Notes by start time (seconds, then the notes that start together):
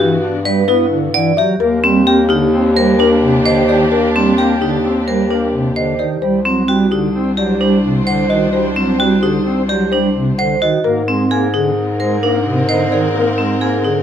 Already playing: G2 B3 F#4
0.00 E3 F#4 G4
0.22 D4
0.45 G3 B4 D5
0.68 B3 E4 B4
0.91 D3
1.14 E3 D5 F#5
1.37 F#3 G4 E5
1.60 D#2 A#3 D4 G4 A#4
1.84 G3 C4
2.07 A#3 G4 G5
2.29 D3 D#4 G4
2.54 C4
2.76 G3 A#4 C5
2.99 A#3 D4 A#4
3.22 C3
3.45 D3 C5 D#5
3.68 D#3 G4 D5
3.92 A#3 A#4
4.15 G3 C4
4.38 A#3 G4 G5
4.61 D3 D#4 G4
4.84 C4
5.07 G3 A#4 C5
5.30 A#3 D4 A#4
5.53 C3
5.76 D3 C5 D#5
5.99 D#3 G4 D5
6.22 C2 G3 D4 C5
6.45 F#3 C4
6.68 G3 F#4 G5
6.91 D3 D#4 G4
7.15 C4
7.37 F#3 G4 D5
7.60 G3 D4 C5
7.84 C3
8.07 D3 C5 F#5
8.29 D#3 F#4 D#5
8.53 G3 C5
8.76 F#3 C4
8.99 G3 F#4 G5
9.22 D3 D#4 G4
9.45 C4
9.69 F#3 G4 D5
9.92 G3 D4 C5
10.16 C3
10.38 D3 C5 F#5
10.62 D#3 F#4 D#5
10.84 G#2 A#3 C4 A#4
11.08 G#3 C4
11.31 A#3 G#4 G#5
11.54 D3 D#4 G#4
12.00 G#3 A#4 C5
12.22 A#3 D4 A#4
12.46 C3
12.69 D3 C5 D#5
12.91 D#3 G#4 D5
13.15 A#3 A#4
13.38 G#3 C4
13.61 A#3 G#4 G#5
13.84 D3 D#4 G#4